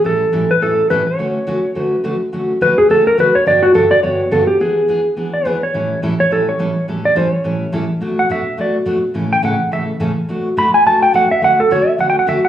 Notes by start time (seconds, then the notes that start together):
0.04 A2 E3 G3 C#4 E4 A4
0.32 A2 E3 G3 C#4 E4 A4
0.51 B4
0.61 A2 E3 G3 C#4 E4 A4
0.90 A2 E3 G3 C#4 E4 A4 B4
1.07 C#5
1.18 D3 F#3 A3 C#4 F#4
1.47 D3 F#3 A3 C#4 F#4
1.75 D3 F#3 A3 C#4 F#4
1.83 B4
2.04 D3 F#3 A3 C#4 F#4
2.32 D3 F#3 A3 C#4 F#4
2.61 D3 F#3 A3 C#4 F#4 B4
2.78 G#4
2.89 D3 F#3 A3 C#4 F#4 A4
3.07 A#4
3.18 D3 F#3 A3 C#4 F#4 B4
3.35 C#5
3.46 G2 D3 F#3 B3 D4 G4 D5
3.63 F#4
3.74 G2 D3 F#3 B3 D4 G4 A4
3.91 D5
4.03 G2 D3 F#3 B3 D4 G4 C#5
4.31 G2 D3 F#3 B3 D4 G4 A4
4.47 G4
4.60 E3 B3 D4 G#4
4.88 E3 B3 D4 G#4
5.17 E3 B3 D4 G#4
5.34 D5
5.45 E3 B3 D4 G#4 B4
5.63 C#5
5.74 A2 E3 G3 C#4 E4 A4
6.02 A2 E3 G3 C#4 E4 A4
6.20 C#5
6.30 A2 E3 G3 C#4 E4 A4
6.49 C#5
6.59 A2 E3 G3 C#4 E4 A4
6.88 A2 E3 G3 C#4 E4 A4
7.05 D5
7.15 A2 E3 G3 C#4 E4 A4 C5
7.33 C#5
7.44 A2 E3 G3 C#4 E4 A4
7.72 A2 E3 G3 C#4 E4 A4
8.01 B2 F#3 A3 D4 F#4
8.19 F#5
8.29 B2 F#3 A3 D4 F#4 E5
8.57 B2 F#3 A3 D4 F#4 D5
8.86 B2 F#3 A3 D4 F#4
9.14 A2 C#3 E3 A3 C#4 A4
9.33 G5
9.42 A2 C#3 E3 A3 C#4 A4 F#5
9.71 A2 C#3 E3 A3 C#4 A4 E5
10.00 A2 C#3 E3 A3 C#4 A4
10.29 B2 F#3 A3 D4 F#4
10.57 B2 F#3 A3 D4 F#4 B5
10.74 G#5
10.85 B2 F#3 A3 D4 F#4 A5
11.03 G5
11.13 B2 F#3 A3 D4 F#4 F#5
11.31 E5
11.41 D3 F#3 A3 C#4 F#4 F#5
11.60 A4
11.70 D3 F#3 A3 C#4 F#4 C#5
11.88 E5
11.98 D3 F#3 A3 C#4 F#4 F#5
12.10 G5
12.19 F#5
12.27 D3 F#3 A3 C#4 F#4 E5
12.45 F#5